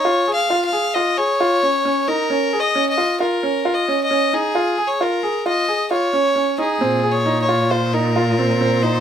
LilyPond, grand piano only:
\new Staff \with { instrumentName = "Grand piano" } { \time 5/4 \key bes \minor \tempo 4 = 133 f'8 aes'8 f'8 aes'8 f'8 aes'8 f'8 des'8 des'8 ees'8 | des'8 aes'8 des'8 f'8 f'8 des'8 f'8 des'8 des'8 ees'8 | f'8 aes'8 f'8 aes'8 f'8 aes'8 f'8 des'8 des'8 ees'8 | c'8 aes'8 ees'8 f'8 f'8 ees'8 f'8 c'8 c'8 ees'8 | }